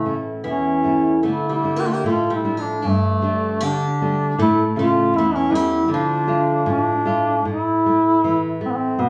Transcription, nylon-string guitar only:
0.00 0.44 A2 medium
0.05 0.69 A3 soft
0.05 0.70 C#4 soft
0.05 0.70 E4 soft
0.44 1.22 E2 soft
0.83 1.16 A3 soft
0.83 1.16 C#4 soft
0.83 1.17 E4 soft
1.25 2.03 D3 medium
1.64 2.29 A3 soft
1.64 2.29 D4 soft
1.64 2.29 E4 soft
2.04 2.82 A2 medium
2.45 2.77 A3 soft
2.45 2.76 D4 soft
2.45 2.77 E4 soft
2.84 3.60 G2 medium
3.22 3.84 G3 soft
3.22 3.85 A3 soft
3.22 3.85 D4 soft
3.62 4.37 D3 medium
4.01 4.32 G3 soft
4.01 4.32 A3 soft
4.01 4.32 D4 medium
4.38 5.12 A2 medium
4.76 5.13 C#3 soft
4.76 5.36 A3 soft
4.76 5.37 C#4 medium
5.14 5.87 E2 medium
5.50 5.81 E3 soft
5.50 5.82 A3 soft
5.50 5.82 C#4 soft
5.88 6.64 D3 medium
6.27 6.91 A3 soft
6.27 6.91 D4 soft
6.27 6.92 F4 medium
6.66 7.43 A2 medium
7.05 7.37 A3 soft
7.05 7.38 D4 soft
7.05 7.38 F4 medium
7.45 8.93 A2 medium
7.86 8.23 A3 soft
8.24 8.60 E3 medium
8.61 8.97 A3 soft
8.99 9.09 B2 medium

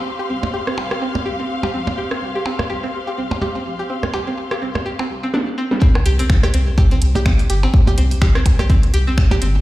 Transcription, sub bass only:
0.30 0.46 C2 medium
0.78 0.94 C2 medium
1.26 1.42 C2 medium
1.74 1.90 A#1 medium
2.22 2.38 C2 loud
2.70 2.86 C2 loud
3.18 3.34 C2 medium
3.66 3.82 A#1 medium
4.14 4.30 C2 medium
4.62 4.78 C2 loud
5.10 5.26 C2 medium
6.06 6.22 C2 loud
6.54 6.70 C2 loud
7.02 7.18 C2 medium
7.50 7.66 G1 loud
7.98 8.14 C2 loud
8.46 8.62 C2 medium
8.94 9.10 C2 medium
9.42 9.58 G1 loud

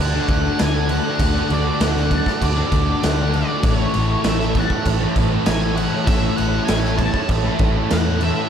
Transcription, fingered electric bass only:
0.00 0.18 D2 loud
0.29 0.48 D2 loud
0.61 0.98 D2 medium
1.19 1.39 D2 loud
1.50 1.69 D2 medium
1.80 2.19 D2 loud
2.41 2.61 D2 medium
2.72 2.91 D2 medium
3.04 3.42 D2 medium
3.63 3.83 A1 loud
3.95 4.14 A1 medium
4.24 4.63 A1 medium
4.85 5.05 A1 medium
5.17 5.36 A1 medium
5.47 5.85 A1 medium
6.07 6.27 A1 loud
6.39 6.58 A1 medium
6.69 7.07 A1 medium
7.29 7.49 A1 loud
7.60 7.79 A1 medium
7.92 8.30 E2 loud

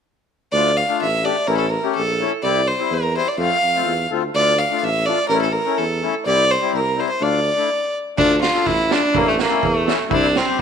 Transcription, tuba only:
0.53 0.81 D2 loud
1.01 1.30 A1 medium
1.47 1.76 A1 loud
1.96 2.25 A#1 medium
2.43 2.72 C2 medium
2.91 3.20 E2 medium
3.38 3.52 F2 loud
3.62 3.84 F2 medium
3.86 4.08 E2 medium
4.11 4.32 D2 medium
4.34 4.63 D2 loud
4.82 5.11 A1 medium
5.29 5.58 A1 loud
5.78 6.07 E2 medium
6.26 6.55 C2 loud
6.73 7.02 C2 medium
7.21 7.50 D2 loud
8.18 8.47 D2 loud
8.66 8.95 A1 medium
9.15 9.43 A1 loud
9.63 9.91 E2 medium
10.11 10.39 C2 loud
10.59 10.62 E2 loud

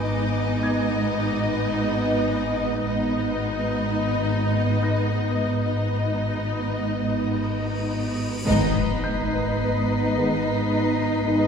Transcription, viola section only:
0.07 2.83 B3 soft
0.07 2.83 D#4 soft
2.86 5.63 B3 soft
2.86 5.63 D#4 soft
5.67 8.23 B3 soft
5.67 8.23 D#4 soft
8.46 11.23 B3 medium
11.27 11.47 B3 soft

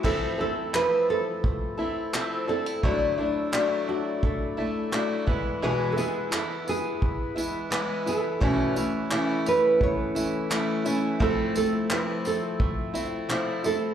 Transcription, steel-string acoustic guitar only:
0.03 0.39 F3 medium
0.03 0.39 C4 medium
0.03 0.39 E4 medium
0.03 0.37 A4 medium
0.38 0.73 C4 soft
0.38 0.74 E4 soft
0.38 0.73 A4 soft
0.73 1.78 F3 medium
0.73 1.79 C4 medium
0.73 1.78 E4 medium
0.73 1.77 A4 medium
1.78 2.13 C4 soft
1.78 2.14 E4 soft
1.78 2.13 A4 soft
2.13 2.48 F3 medium
2.13 2.49 C4 medium
2.13 2.48 E4 medium
2.13 2.47 A4 medium
2.48 2.84 C4 soft
2.48 2.84 E4 soft
2.48 2.83 A4 medium
2.83 3.18 D3 medium
2.83 3.19 F#3 medium
2.83 3.19 A3 medium
2.83 3.18 D4 medium
2.83 3.16 E4 medium
3.18 3.52 A3 soft
3.18 3.53 D4 medium
3.18 3.53 E4 soft
3.52 4.57 F#3 medium
3.52 4.58 A3 medium
3.52 4.57 D4 medium
3.52 4.57 E4 medium
4.57 4.91 A3 soft
4.57 4.92 D4 soft
4.57 4.92 E4 medium
4.92 5.27 F#3 medium
4.92 5.28 A3 medium
4.92 5.27 D4 medium
4.92 5.25 E4 medium
5.26 5.62 E3 soft
5.26 5.62 G#3 soft
5.26 5.62 B3 soft
5.26 5.62 E4 medium
5.62 5.97 E2 medium
5.62 5.98 B2 medium
5.62 5.98 E3 medium
5.62 5.97 G#3 medium
5.62 5.96 B3 medium
5.62 5.95 E4 medium
5.96 6.30 E3 soft
5.96 6.33 G#3 soft
5.96 6.32 B3 soft
5.96 6.32 E4 medium
6.31 7.38 E3 medium
6.31 7.36 B3 medium
6.31 7.35 E4 medium
7.36 7.69 E3 soft
7.36 7.70 G#3 soft
7.36 7.71 B3 soft
7.36 7.71 E4 medium
7.70 8.06 E3 medium
7.70 8.06 G#3 medium
7.70 8.06 B3 medium
7.70 8.05 E4 medium
8.06 8.40 E3 soft
8.06 8.42 B3 soft
8.06 8.41 E4 soft
8.40 8.76 E2 medium
8.40 8.76 B2 medium
8.40 8.76 E3 medium
8.40 8.77 A3 medium
8.40 8.76 C#4 medium
8.40 8.75 E4 medium
8.76 9.09 E3 soft
8.76 9.10 A3 soft
8.76 9.11 C#4 soft
8.76 9.11 E4 medium
9.10 10.17 E3 medium
9.10 10.16 A3 medium
9.10 10.15 C#4 medium
9.10 10.15 E4 medium
10.15 10.49 E3 soft
10.15 10.50 A3 soft
10.15 10.51 C#4 soft
10.15 10.50 E4 medium
10.50 10.85 E3 medium
10.50 10.85 A3 medium
10.50 10.85 C#4 medium
10.50 10.84 E4 medium
10.85 11.19 E3 soft
10.85 11.19 A3 medium
10.85 11.20 C#4 medium
10.85 11.20 E4 medium
11.20 11.55 F3 medium
11.20 11.55 A3 medium
11.20 11.55 C4 medium
11.20 11.53 E4 medium
11.55 11.89 A3 soft
11.55 11.90 C4 soft
11.55 11.90 E4 soft
11.90 12.94 F3 medium
11.90 12.96 A3 medium
11.90 12.94 C4 medium
11.90 12.93 E4 medium
12.94 13.28 A3 soft
12.94 13.29 C4 soft
12.94 13.29 E4 soft
13.29 13.64 F3 medium
13.29 13.64 A3 medium
13.29 13.64 C4 medium
13.29 13.62 E4 medium
13.64 13.94 A3 soft
13.64 13.94 C4 soft
13.64 13.94 E4 medium

